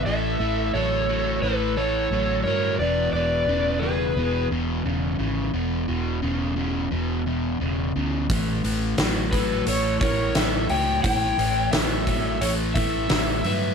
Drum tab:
HH |--------|--------|--------|oooooooo|
SD |--------|--------|--------|--o---o-|
BD |--------|--------|--------|o--o-o--|

HH |oooooooo|
SD |--o---o-|
BD |o--o-o--|